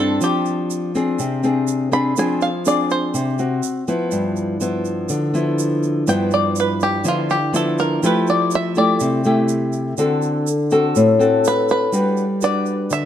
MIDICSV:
0, 0, Header, 1, 4, 480
1, 0, Start_track
1, 0, Tempo, 488202
1, 206, Time_signature, 4, 2, 24, 8
1, 12833, End_track
2, 0, Start_track
2, 0, Title_t, "Five-string banjo"
2, 0, Program_c, 0, 105
2, 0, Note_on_c, 0, 69, 90
2, 209, Note_off_c, 0, 69, 0
2, 233, Note_on_c, 0, 67, 67
2, 900, Note_off_c, 0, 67, 0
2, 1900, Note_on_c, 0, 83, 93
2, 2126, Note_off_c, 0, 83, 0
2, 2155, Note_on_c, 0, 80, 69
2, 2374, Note_off_c, 0, 80, 0
2, 2382, Note_on_c, 0, 77, 76
2, 2607, Note_off_c, 0, 77, 0
2, 2632, Note_on_c, 0, 74, 75
2, 2853, Note_off_c, 0, 74, 0
2, 2866, Note_on_c, 0, 72, 75
2, 4017, Note_off_c, 0, 72, 0
2, 5987, Note_on_c, 0, 79, 79
2, 6210, Note_off_c, 0, 79, 0
2, 6231, Note_on_c, 0, 74, 90
2, 6452, Note_off_c, 0, 74, 0
2, 6488, Note_on_c, 0, 71, 78
2, 6701, Note_off_c, 0, 71, 0
2, 6715, Note_on_c, 0, 67, 86
2, 6934, Note_off_c, 0, 67, 0
2, 6964, Note_on_c, 0, 65, 73
2, 7179, Note_off_c, 0, 65, 0
2, 7184, Note_on_c, 0, 67, 85
2, 7408, Note_off_c, 0, 67, 0
2, 7433, Note_on_c, 0, 69, 81
2, 7653, Note_off_c, 0, 69, 0
2, 7666, Note_on_c, 0, 70, 95
2, 7889, Note_off_c, 0, 70, 0
2, 7925, Note_on_c, 0, 71, 77
2, 8139, Note_off_c, 0, 71, 0
2, 8158, Note_on_c, 0, 74, 84
2, 8375, Note_off_c, 0, 74, 0
2, 8409, Note_on_c, 0, 76, 113
2, 8621, Note_off_c, 0, 76, 0
2, 8634, Note_on_c, 0, 74, 100
2, 9300, Note_off_c, 0, 74, 0
2, 11283, Note_on_c, 0, 71, 93
2, 11502, Note_off_c, 0, 71, 0
2, 11514, Note_on_c, 0, 71, 96
2, 12231, Note_on_c, 0, 74, 92
2, 12239, Note_off_c, 0, 71, 0
2, 12706, Note_off_c, 0, 74, 0
2, 12710, Note_on_c, 0, 76, 98
2, 12833, Note_off_c, 0, 76, 0
2, 12833, End_track
3, 0, Start_track
3, 0, Title_t, "Nylon-string guitar"
3, 0, Program_c, 1, 24
3, 0, Note_on_c, 1, 43, 71
3, 0, Note_on_c, 1, 60, 66
3, 0, Note_on_c, 1, 62, 63
3, 183, Note_off_c, 1, 43, 0
3, 206, Note_on_c, 1, 53, 68
3, 889, Note_off_c, 1, 60, 0
3, 892, Note_off_c, 1, 62, 0
3, 934, Note_on_c, 1, 60, 69
3, 939, Note_on_c, 1, 62, 59
3, 947, Note_on_c, 1, 68, 65
3, 1142, Note_off_c, 1, 53, 0
3, 1171, Note_on_c, 1, 48, 67
3, 1372, Note_off_c, 1, 60, 0
3, 1375, Note_off_c, 1, 62, 0
3, 1377, Note_off_c, 1, 68, 0
3, 1410, Note_on_c, 1, 60, 63
3, 1418, Note_on_c, 1, 62, 60
3, 1423, Note_on_c, 1, 68, 59
3, 1850, Note_off_c, 1, 60, 0
3, 1854, Note_off_c, 1, 62, 0
3, 1857, Note_off_c, 1, 68, 0
3, 1884, Note_on_c, 1, 60, 61
3, 1890, Note_on_c, 1, 62, 69
3, 1892, Note_on_c, 1, 68, 75
3, 2088, Note_off_c, 1, 60, 0
3, 2089, Note_off_c, 1, 68, 0
3, 2090, Note_off_c, 1, 62, 0
3, 2105, Note_off_c, 1, 48, 0
3, 2139, Note_on_c, 1, 53, 66
3, 2143, Note_on_c, 1, 60, 66
3, 2143, Note_on_c, 1, 62, 55
3, 2147, Note_on_c, 1, 68, 65
3, 2443, Note_off_c, 1, 60, 0
3, 2445, Note_off_c, 1, 62, 0
3, 2445, Note_off_c, 1, 68, 0
3, 2615, Note_on_c, 1, 60, 53
3, 2619, Note_on_c, 1, 62, 53
3, 2623, Note_on_c, 1, 68, 55
3, 3069, Note_off_c, 1, 53, 0
3, 3087, Note_on_c, 1, 48, 73
3, 3293, Note_off_c, 1, 60, 0
3, 3295, Note_off_c, 1, 62, 0
3, 3297, Note_off_c, 1, 68, 0
3, 3332, Note_on_c, 1, 60, 58
3, 3336, Note_on_c, 1, 66, 58
3, 3543, Note_off_c, 1, 48, 0
3, 3771, Note_off_c, 1, 60, 0
3, 3772, Note_off_c, 1, 66, 0
3, 3814, Note_on_c, 1, 53, 66
3, 3816, Note_on_c, 1, 59, 64
3, 3822, Note_on_c, 1, 64, 75
3, 4050, Note_on_c, 1, 43, 71
3, 4516, Note_off_c, 1, 53, 0
3, 4520, Note_off_c, 1, 59, 0
3, 4521, Note_off_c, 1, 64, 0
3, 4526, Note_on_c, 1, 53, 47
3, 4533, Note_on_c, 1, 64, 54
3, 4535, Note_on_c, 1, 59, 51
3, 4985, Note_off_c, 1, 43, 0
3, 5010, Note_on_c, 1, 50, 72
3, 5209, Note_off_c, 1, 53, 0
3, 5211, Note_off_c, 1, 59, 0
3, 5212, Note_off_c, 1, 64, 0
3, 5247, Note_on_c, 1, 53, 55
3, 5254, Note_on_c, 1, 59, 60
3, 5260, Note_on_c, 1, 64, 61
3, 5929, Note_off_c, 1, 53, 0
3, 5931, Note_off_c, 1, 59, 0
3, 5935, Note_off_c, 1, 64, 0
3, 5945, Note_off_c, 1, 50, 0
3, 5970, Note_on_c, 1, 43, 68
3, 5976, Note_on_c, 1, 53, 56
3, 5977, Note_on_c, 1, 59, 55
3, 5982, Note_on_c, 1, 64, 60
3, 6891, Note_off_c, 1, 53, 0
3, 6894, Note_off_c, 1, 59, 0
3, 6895, Note_off_c, 1, 64, 0
3, 6905, Note_off_c, 1, 43, 0
3, 6923, Note_on_c, 1, 50, 74
3, 6926, Note_on_c, 1, 53, 59
3, 6928, Note_on_c, 1, 59, 57
3, 6933, Note_on_c, 1, 64, 61
3, 7234, Note_off_c, 1, 53, 0
3, 7237, Note_off_c, 1, 59, 0
3, 7237, Note_off_c, 1, 64, 0
3, 7401, Note_on_c, 1, 53, 63
3, 7409, Note_on_c, 1, 59, 56
3, 7414, Note_on_c, 1, 64, 67
3, 7860, Note_off_c, 1, 50, 0
3, 7864, Note_off_c, 1, 53, 0
3, 7869, Note_off_c, 1, 59, 0
3, 7870, Note_off_c, 1, 64, 0
3, 7891, Note_on_c, 1, 57, 59
3, 7896, Note_on_c, 1, 53, 75
3, 7900, Note_on_c, 1, 64, 58
3, 7903, Note_on_c, 1, 67, 60
3, 8570, Note_off_c, 1, 57, 0
3, 8572, Note_off_c, 1, 64, 0
3, 8576, Note_off_c, 1, 67, 0
3, 8618, Note_on_c, 1, 57, 61
3, 8621, Note_on_c, 1, 64, 64
3, 8625, Note_on_c, 1, 67, 78
3, 8827, Note_off_c, 1, 53, 0
3, 8857, Note_on_c, 1, 48, 73
3, 9053, Note_off_c, 1, 57, 0
3, 9054, Note_off_c, 1, 64, 0
3, 9056, Note_off_c, 1, 67, 0
3, 9097, Note_on_c, 1, 57, 66
3, 9102, Note_on_c, 1, 64, 60
3, 9107, Note_on_c, 1, 67, 74
3, 9772, Note_off_c, 1, 57, 0
3, 9775, Note_off_c, 1, 64, 0
3, 9777, Note_off_c, 1, 67, 0
3, 9786, Note_off_c, 1, 48, 0
3, 9810, Note_on_c, 1, 50, 76
3, 9815, Note_on_c, 1, 60, 59
3, 9818, Note_on_c, 1, 66, 69
3, 9823, Note_on_c, 1, 69, 71
3, 10286, Note_off_c, 1, 60, 0
3, 10288, Note_off_c, 1, 66, 0
3, 10290, Note_off_c, 1, 69, 0
3, 10534, Note_on_c, 1, 60, 66
3, 10537, Note_on_c, 1, 66, 67
3, 10542, Note_on_c, 1, 69, 77
3, 10743, Note_off_c, 1, 50, 0
3, 10775, Note_on_c, 1, 45, 77
3, 10970, Note_off_c, 1, 60, 0
3, 10971, Note_off_c, 1, 66, 0
3, 10974, Note_off_c, 1, 69, 0
3, 11005, Note_on_c, 1, 60, 60
3, 11014, Note_on_c, 1, 66, 68
3, 11016, Note_on_c, 1, 69, 64
3, 11687, Note_off_c, 1, 60, 0
3, 11688, Note_off_c, 1, 66, 0
3, 11691, Note_off_c, 1, 69, 0
3, 11705, Note_off_c, 1, 45, 0
3, 11723, Note_on_c, 1, 55, 65
3, 11727, Note_on_c, 1, 62, 49
3, 11732, Note_on_c, 1, 66, 49
3, 11738, Note_on_c, 1, 71, 57
3, 12033, Note_off_c, 1, 62, 0
3, 12036, Note_off_c, 1, 66, 0
3, 12039, Note_off_c, 1, 71, 0
3, 12212, Note_on_c, 1, 62, 46
3, 12214, Note_on_c, 1, 66, 47
3, 12218, Note_on_c, 1, 71, 53
3, 12659, Note_off_c, 1, 55, 0
3, 12688, Note_on_c, 1, 50, 63
3, 12833, Note_off_c, 1, 50, 0
3, 12833, Note_off_c, 1, 62, 0
3, 12833, Note_off_c, 1, 66, 0
3, 12833, Note_off_c, 1, 71, 0
3, 12833, End_track
4, 0, Start_track
4, 0, Title_t, "Drums"
4, 206, Note_on_c, 9, 82, 63
4, 305, Note_off_c, 9, 82, 0
4, 448, Note_on_c, 9, 82, 26
4, 546, Note_off_c, 9, 82, 0
4, 692, Note_on_c, 9, 82, 67
4, 790, Note_off_c, 9, 82, 0
4, 935, Note_on_c, 9, 82, 27
4, 1033, Note_off_c, 9, 82, 0
4, 1169, Note_on_c, 9, 82, 66
4, 1267, Note_off_c, 9, 82, 0
4, 1410, Note_on_c, 9, 82, 26
4, 1508, Note_off_c, 9, 82, 0
4, 1646, Note_on_c, 9, 82, 65
4, 1744, Note_off_c, 9, 82, 0
4, 1889, Note_on_c, 9, 82, 29
4, 1987, Note_off_c, 9, 82, 0
4, 2127, Note_on_c, 9, 82, 64
4, 2226, Note_off_c, 9, 82, 0
4, 2370, Note_on_c, 9, 82, 26
4, 2469, Note_off_c, 9, 82, 0
4, 2608, Note_on_c, 9, 82, 63
4, 2706, Note_off_c, 9, 82, 0
4, 2853, Note_on_c, 9, 82, 28
4, 2951, Note_off_c, 9, 82, 0
4, 3090, Note_on_c, 9, 82, 66
4, 3188, Note_off_c, 9, 82, 0
4, 3328, Note_on_c, 9, 82, 28
4, 3426, Note_off_c, 9, 82, 0
4, 3568, Note_on_c, 9, 82, 62
4, 3666, Note_off_c, 9, 82, 0
4, 3811, Note_on_c, 9, 82, 31
4, 3910, Note_off_c, 9, 82, 0
4, 4044, Note_on_c, 9, 82, 56
4, 4142, Note_off_c, 9, 82, 0
4, 4290, Note_on_c, 9, 82, 27
4, 4388, Note_off_c, 9, 82, 0
4, 4529, Note_on_c, 9, 82, 62
4, 4627, Note_off_c, 9, 82, 0
4, 4768, Note_on_c, 9, 82, 30
4, 4866, Note_off_c, 9, 82, 0
4, 5003, Note_on_c, 9, 82, 66
4, 5102, Note_off_c, 9, 82, 0
4, 5255, Note_on_c, 9, 82, 27
4, 5353, Note_off_c, 9, 82, 0
4, 5492, Note_on_c, 9, 82, 64
4, 5590, Note_off_c, 9, 82, 0
4, 5732, Note_on_c, 9, 82, 28
4, 5830, Note_off_c, 9, 82, 0
4, 5969, Note_on_c, 9, 82, 61
4, 6067, Note_off_c, 9, 82, 0
4, 6202, Note_on_c, 9, 82, 27
4, 6301, Note_off_c, 9, 82, 0
4, 6446, Note_on_c, 9, 82, 60
4, 6545, Note_off_c, 9, 82, 0
4, 6689, Note_on_c, 9, 82, 29
4, 6787, Note_off_c, 9, 82, 0
4, 6925, Note_on_c, 9, 82, 68
4, 7023, Note_off_c, 9, 82, 0
4, 7175, Note_on_c, 9, 82, 27
4, 7273, Note_off_c, 9, 82, 0
4, 7414, Note_on_c, 9, 82, 71
4, 7512, Note_off_c, 9, 82, 0
4, 7651, Note_on_c, 9, 82, 27
4, 7750, Note_off_c, 9, 82, 0
4, 7894, Note_on_c, 9, 82, 60
4, 7992, Note_off_c, 9, 82, 0
4, 8132, Note_on_c, 9, 82, 28
4, 8230, Note_off_c, 9, 82, 0
4, 8365, Note_on_c, 9, 82, 67
4, 8463, Note_off_c, 9, 82, 0
4, 8604, Note_on_c, 9, 82, 29
4, 8702, Note_off_c, 9, 82, 0
4, 8847, Note_on_c, 9, 82, 70
4, 8945, Note_off_c, 9, 82, 0
4, 9085, Note_on_c, 9, 82, 28
4, 9183, Note_off_c, 9, 82, 0
4, 9325, Note_on_c, 9, 82, 68
4, 9423, Note_off_c, 9, 82, 0
4, 9562, Note_on_c, 9, 82, 29
4, 9660, Note_off_c, 9, 82, 0
4, 9806, Note_on_c, 9, 82, 61
4, 9904, Note_off_c, 9, 82, 0
4, 10047, Note_on_c, 9, 82, 26
4, 10145, Note_off_c, 9, 82, 0
4, 10291, Note_on_c, 9, 82, 67
4, 10390, Note_off_c, 9, 82, 0
4, 10525, Note_on_c, 9, 82, 29
4, 10623, Note_off_c, 9, 82, 0
4, 10768, Note_on_c, 9, 82, 67
4, 10867, Note_off_c, 9, 82, 0
4, 11018, Note_on_c, 9, 82, 28
4, 11116, Note_off_c, 9, 82, 0
4, 11253, Note_on_c, 9, 82, 64
4, 11351, Note_off_c, 9, 82, 0
4, 11490, Note_on_c, 9, 82, 28
4, 11588, Note_off_c, 9, 82, 0
4, 11726, Note_on_c, 9, 82, 61
4, 11825, Note_off_c, 9, 82, 0
4, 11964, Note_on_c, 9, 82, 25
4, 12062, Note_off_c, 9, 82, 0
4, 12203, Note_on_c, 9, 82, 62
4, 12302, Note_off_c, 9, 82, 0
4, 12445, Note_on_c, 9, 82, 26
4, 12544, Note_off_c, 9, 82, 0
4, 12686, Note_on_c, 9, 82, 60
4, 12784, Note_off_c, 9, 82, 0
4, 12833, End_track
0, 0, End_of_file